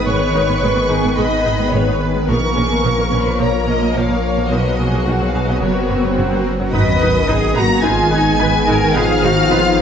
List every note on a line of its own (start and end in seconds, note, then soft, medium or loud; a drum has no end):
0.00 2.30 G#1 medium
0.00 2.25 D#3 medium
0.00 2.26 D#3 medium
0.00 2.25 B3 medium
0.00 2.29 G#4 medium
0.00 2.24 B4 medium
0.00 2.25 B4 medium
0.06 0.12 G#1 medium
0.06 0.12 G#2 medium
0.06 0.13 G#3 medium
0.06 0.61 C#5 medium
0.06 1.16 C#6 medium
0.34 0.40 G#1 soft
0.34 0.40 G#2 soft
0.34 0.40 D#4 soft
0.48 0.54 G#2 soft
0.48 0.54 B3 soft
0.61 0.68 G#1 medium
0.61 0.68 G#2 medium
0.61 0.67 G#3 medium
0.61 0.89 B4 medium
0.75 0.82 G#2 soft
0.75 0.81 B3 soft
0.88 0.96 G#1 soft
0.88 0.96 G#2 soft
0.88 0.94 D#4 soft
0.88 1.18 G#4 medium
1.03 1.09 G#2 soft
1.03 1.08 B3 soft
1.17 1.23 G#1 medium
1.17 1.23 G#2 medium
1.17 1.22 G#3 medium
1.17 1.72 D#5 medium
1.17 2.01 B5 medium
1.45 1.51 G#1 soft
1.45 1.51 G#2 soft
1.45 1.50 D#4 soft
1.58 1.64 G#2 soft
1.58 1.64 B3 soft
1.72 1.79 G#1 medium
1.72 1.78 G#2 medium
1.72 1.79 G#3 medium
1.72 2.01 C#5 medium
1.87 1.92 G#2 soft
1.87 1.93 B3 medium
2.01 2.29 B4 medium
2.14 2.20 G#2 soft
2.14 2.20 B3 soft
2.28 2.34 A#1 medium
2.28 4.53 A#1 medium
2.28 2.34 A#2 medium
2.28 2.34 F3 medium
2.28 4.51 F3 medium
2.28 4.47 F3 medium
2.28 4.51 A#3 medium
2.28 4.51 A#4 medium
2.28 2.57 A#4 medium
2.28 4.51 C#5 medium
2.28 3.36 C#6 medium
2.56 2.62 A#1 soft
2.56 2.62 A#2 soft
2.56 2.62 C#4 soft
2.56 2.84 G#4 medium
2.70 2.75 A#2 soft
2.70 2.75 A#3 soft
2.83 2.90 A#1 medium
2.83 2.89 A#2 medium
2.83 2.89 F3 medium
2.83 3.12 A#4 soft
2.98 3.03 A#2 soft
2.98 3.04 A#3 soft
3.11 3.17 A#1 soft
3.11 3.17 A#2 soft
3.11 3.17 C#4 soft
3.11 3.40 B4 soft
3.25 3.31 A#2 soft
3.25 3.31 A#3 soft
3.39 3.45 A#1 medium
3.39 3.44 A#2 medium
3.39 3.45 F3 medium
3.39 3.68 C#5 medium
3.39 3.95 A#5 medium
3.67 3.72 A#1 soft
3.67 3.73 A#2 soft
3.67 3.73 C#4 soft
3.67 3.95 D#5 medium
3.81 3.87 A#2 soft
3.81 3.87 A#3 soft
3.95 4.01 A#1 medium
3.95 4.00 A#2 soft
3.95 4.01 F3 medium
3.95 4.51 C#5 medium
3.95 4.52 F5 medium
4.09 4.14 A#2 soft
4.09 4.14 A#3 soft
4.37 4.42 A#2 soft
4.37 4.42 A#3 soft
4.50 4.56 B1 medium
4.50 5.63 B1 medium
4.50 4.56 B2 medium
4.50 4.56 D#3 soft
4.50 6.41 F#3 soft
4.50 6.73 F#3 medium
4.50 5.60 B3 soft
4.50 5.62 B3 medium
4.50 6.49 F#4 soft
4.50 6.74 F#4 medium
4.50 4.79 B4 soft
4.50 5.63 B4 medium
4.50 5.06 D#5 medium
4.50 swell soft
4.78 4.84 B1 soft
4.78 4.84 B2 soft
4.78 4.84 B3 soft
4.78 5.61 G#4 soft
4.92 4.97 B2 soft
4.92 4.99 F#3 soft
5.06 5.12 B1 medium
5.06 5.12 B2 soft
5.06 5.12 D#3 soft
5.06 5.25 F#5 medium
5.20 5.26 B2 soft
5.20 5.25 F#3 soft
5.27 5.45 F5 medium
5.34 5.40 B1 soft
5.34 5.40 B2 soft
5.34 5.40 B3 soft
5.44 5.53 B2 soft
5.44 5.53 F#3 soft
5.44 5.63 D#5 medium
5.61 5.67 F#1 soft
5.61 6.73 F#1 medium
5.61 5.67 F#2 soft
5.61 5.67 C#3 soft
5.61 6.46 A#3 soft
5.61 6.73 C#4 medium
5.61 6.73 A#4 medium
5.61 6.46 A#4 soft
5.61 6.17 C#5 soft
5.89 5.96 F#1 soft
5.89 5.95 F#2 soft
5.89 5.95 A#3 soft
6.03 6.09 F#2 soft
6.03 6.09 F#3 soft
6.16 6.23 F#1 soft
6.16 6.22 F#2 soft
6.16 6.22 C#3 soft
6.31 6.37 F#2 soft
6.31 6.37 F#3 soft
6.59 6.65 F#2 soft
6.59 6.65 F#3 soft
6.72 6.81 G#1 medium
6.72 9.82 G#1 medium
6.72 9.82 D#3 medium
6.72 7.53 D#3 medium
6.72 9.82 D#3 medium
6.72 9.82 B3 medium
6.72 6.81 D#4 medium
6.72 9.82 D#4 medium
6.72 9.82 G#4 medium
6.72 7.25 B4 medium
6.72 6.81 B4 medium
6.72 9.82 B4 medium
6.72 7.53 D#5 medium
6.72 7.53 D#6 medium
6.72 sub drop medium
7.00 7.09 G#1 medium
7.00 7.09 D#4 soft
7.00 7.08 B4 medium
7.28 7.36 G#1 medium
7.28 7.36 D#4 medium
7.28 7.56 G#4 medium
7.28 7.36 B4 medium
7.55 7.64 G#1 medium
7.55 7.84 A#3 medium
7.55 7.63 D#4 soft
7.55 7.85 F#4 medium
7.55 7.63 B4 soft
7.55 7.83 A#5 medium
7.55 7.85 A#6 medium
7.82 7.91 G#1 medium
7.82 8.93 G#3 medium
7.82 7.90 D#4 medium
7.82 8.12 F4 medium
7.82 7.91 B4 medium
7.82 8.93 G#5 medium
7.82 8.95 G#6 medium
8.10 8.19 G#1 medium
8.10 8.19 D#4 soft
8.10 8.39 D#4 medium
8.10 8.18 B4 soft
8.39 8.48 G#1 medium
8.39 8.47 D#4 medium
8.39 8.47 B4 medium
8.39 8.67 B4 medium
8.67 8.76 G#1 medium
8.67 8.75 D#4 medium
8.67 8.95 A#4 medium
8.67 8.75 B4 medium
8.94 9.03 G#1 medium
8.94 9.82 F3 medium
8.94 9.03 D#4 medium
8.94 9.24 G#4 medium
8.94 9.03 B4 medium
8.94 9.82 F5 medium
8.94 9.82 F6 loud
9.23 9.31 G#1 medium
9.23 9.32 D#4 medium
9.23 9.51 F#4 medium
9.23 9.31 B4 medium
9.51 9.59 G#1 medium
9.51 9.59 D#4 medium
9.51 9.79 F4 medium
9.51 9.59 B4 medium
9.78 9.82 G#1 medium